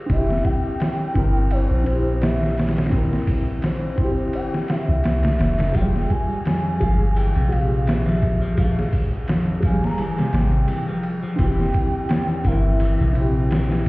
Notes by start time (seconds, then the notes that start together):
Already playing: G#3 F4 G4
0.06 F1 C4, kick, ride
0.10 E4 E5
0.15 G4
0.30 snare
0.44 G5, kick, ride
0.80 snare, ride
1.14 G1 C4 E4, kick, ride
1.19 A#4
1.51 C5, ride
1.71 A#1
1.84 C4 E4, ride
1.92 G4
2.21 E5, snare, ride
2.43 snare
2.58 snare, ride
2.67 snare, ride
2.77 snare, ride
2.85 snare, ride
2.89 C4, kick, ride
2.93 E4
2.98 A#4
3.13 snare
3.27 kick, open hi-hat
3.62 C5, snare, ride
3.95 G1 C4, kick, ride
4.00 E4
4.04 G4
4.33 G5, ride
4.54 snare
4.68 E5, snare, ride
4.89 C2
5.03 E5, snare, ride
5.23 snare, ride
5.39 F1, snare, ride
5.58 snare, ride
5.72 F1 F3 G#3 G5, kick, ride
5.77 F4
5.81 G3
5.96 snare
6.09 G#5, kick, ride
6.45 F2, snare, ride
6.80 G1 F3 G#3 F5, kick, ride
6.84 G#4
7.16 E3 G5, ride
7.36 A#1 C3
7.49 G#3 F5, ride
7.53 F4
7.58 G4
7.87 E3 E5, snare, ride
8.06 F3, snare
8.22 kick, ride
8.42 F3
8.55 F3 G#3, kick, ride
8.60 F5
8.64 G#4
8.79 snare
8.93 kick, open hi-hat
9.28 F2, snare, ride
9.60 G1 F3 G#3, kick, ride
9.65 F5 G#5
9.69 G3
9.84 A#5, snare
9.98 E3 G#5, ride
10.18 C3, snare
10.33 G#1, snare, ride
10.37 G5
10.68 E3, ride
10.88 F3
11.03 ride
11.23 F3
11.36 F1 E3 C4, kick, ride
11.40 E4 G5
11.44 G4
11.60 snare
11.74 kick, ride
12.09 E2, snare, ride
12.43 G1 E3 C4 E4 E5, kick, ride
12.48 A#4
12.80 E3, ride
13.00 A#1 C3
13.12 C4, ride
13.17 E4
13.21 G4
13.51 E3, snare, ride
13.71 E3, snare